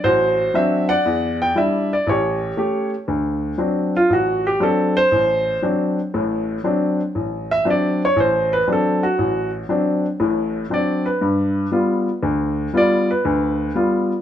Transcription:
upright piano
0.04 A1 F#4 C5
0.54 F#3 C4 D4 E5
0.89 D5 F#5
1.05 E2
1.42 G5
1.55 G3 D4 E4 E5
1.93 D5
2.07 A1 G4 C#5
2.57 A3 C#4 G4
3.08 D2
3.58 F#3 C4 D4
3.97 F4
4.10 A1 F#4
4.47 G4
4.60 F#3 C4 D4 A4
4.97 C5
5.12 A1
5.62 F#3 C4 D4
6.14 A1 A2
6.64 F#3 C4 D4
7.15 A1
7.51 E5
7.65 F#3 C4 D4
7.70 D5
8.05 C#5
8.16 A1
8.20 C5
8.53 B4
8.68 F#3 C4 D4
8.73 A4
9.03 F#4
9.18 A1
9.69 F#3 C4 D4
10.20 A1 A2
10.70 F#3 C4 D4 D5
11.06 B4
11.21 G2
11.72 G3 B3 F4
12.23 D2
12.73 G3 B3 F4 D5
13.11 B4
13.25 D2
13.75 G3 B3 F4

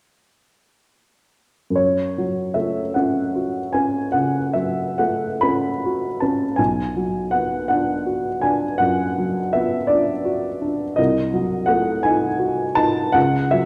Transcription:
upright piano
1.70 F#2
1.75 C#5
2.18 F#3
2.54 A3 E5
2.94 C#4 F#5
3.36 F#4
3.73 C#4 G#5
4.12 C#3 F#5
4.53 F#3 E5
4.98 A3 F#5
5.41 C#4 B5
5.85 F#4
6.20 C#4 A5
6.56 B1 G#5
6.97 F#3
7.31 B3 F#5
7.68 D4 F#5
8.06 F#4
8.41 D4 G#5
8.78 F#2 F#5
9.18 F#3
9.53 B3 E5
9.87 D4 D5
10.25 F#4
10.62 D4
10.96 C2 D#5
11.34 F#3
11.66 A3 F#5
12.03 D#4 G#5
12.39 F#4
12.75 D#4 A5
13.12 C#2 F#5
13.51 F#3 E5

